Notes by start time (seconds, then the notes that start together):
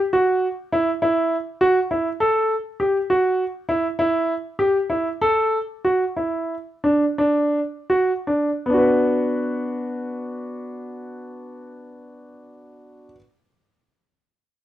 0.13 F#4
0.72 E4
1.02 E4
1.61 F#4
1.91 E4
2.20 A4
2.80 G4
3.10 F#4
3.69 E4
3.99 E4
4.59 G4
4.90 E4
5.21 A4
5.85 F#4
6.17 E4
6.84 D4
7.18 D4
7.90 F#4
8.27 D4
8.66 B3 D4
8.74 F#4 B4